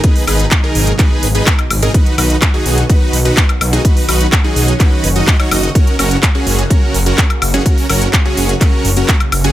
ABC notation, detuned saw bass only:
X:1
M:4/4
L:1/8
Q:1/4=126
K:B
V:1 name="Detuned saw bass" clef=bass
z G,,, z G,,, z G,,, z G,,, | z B,,, z B,,, z B,,, z B,,, | z B,,, z B,,, z F,,, z F,,, | z F,,, z F,,, z F,,, z F,,, |
z F,,, z F,,, z F,,, z F,,, |]